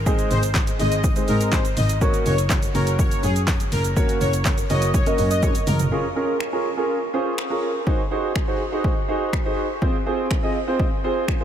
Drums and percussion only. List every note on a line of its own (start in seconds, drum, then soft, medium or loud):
0.06 kick loud
0.06 shaker medium
0.19 closed hi-hat soft
0.19 shaker soft
0.31 open hi-hat medium
0.31 shaker medium
0.43 closed hi-hat medium
0.43 shaker medium
0.54 kick loud
0.54 snare medium
0.54 clap loud
0.54 shaker medium
0.67 closed hi-hat medium
0.67 shaker medium
0.80 open hi-hat medium
0.80 shaker soft
0.92 closed hi-hat medium
0.92 shaker medium
1.04 kick loud
1.04 shaker medium
1.16 closed hi-hat soft
1.16 shaker medium
1.28 open hi-hat medium
1.28 shaker medium
1.41 closed hi-hat medium
1.41 shaker medium
1.52 kick loud
1.52 snare loud
1.52 clap loud
1.52 shaker medium
1.65 closed hi-hat medium
1.65 shaker medium
1.77 open hi-hat medium
1.77 shaker medium
1.89 closed hi-hat medium
1.89 shaker medium
2.01 kick loud
2.01 shaker medium
2.14 closed hi-hat soft
2.14 shaker soft
2.26 open hi-hat medium
2.26 shaker medium
2.38 closed hi-hat medium
2.38 shaker medium
2.49 kick loud
2.49 snare medium
2.49 clap loud
2.49 shaker medium
2.63 closed hi-hat medium
2.63 shaker medium
2.75 open hi-hat medium
2.75 shaker soft
2.87 closed hi-hat medium
2.87 shaker medium
2.99 kick loud
2.99 shaker medium
3.11 closed hi-hat medium
3.11 shaker soft
3.23 open hi-hat medium
3.23 shaker medium
3.36 closed hi-hat medium
3.36 shaker medium
3.47 kick loud
3.47 snare loud
3.47 clap loud
3.47 shaker medium
3.60 closed hi-hat medium
3.60 shaker medium
3.72 open hi-hat medium
3.72 shaker medium
3.84 closed hi-hat medium
3.84 shaker medium
3.97 kick loud
3.97 shaker medium
4.09 closed hi-hat soft
4.09 shaker medium
4.21 open hi-hat medium
4.21 shaker medium
4.33 closed hi-hat medium
4.33 shaker medium
4.45 kick loud
4.45 snare medium
4.45 clap loud
4.45 shaker medium
4.58 closed hi-hat medium
4.58 shaker medium
4.70 open hi-hat medium
4.70 shaker medium
4.82 closed hi-hat medium
4.82 shaker medium
4.94 kick loud
4.94 shaker medium
5.06 closed hi-hat soft
5.06 shaker medium
5.18 open hi-hat medium
5.18 shaker medium
5.31 closed hi-hat medium
5.31 shaker medium
5.43 kick loud
5.43 high tom medium
5.43 shaker medium
5.55 closed hi-hat medium
5.55 shaker medium
5.67 mid tom loud
5.67 open hi-hat medium
5.67 shaker medium
5.79 closed hi-hat medium
5.79 floor tom loud
5.79 shaker medium
6.40 finger snap loud
7.38 finger snap loud
7.87 kick loud
8.36 finger snap loud
8.36 kick loud
8.84 kick loud
9.33 finger snap loud
9.33 kick loud
9.82 kick loud
10.31 finger snap loud
10.31 kick loud
10.80 kick loud
11.28 finger snap loud
11.28 kick loud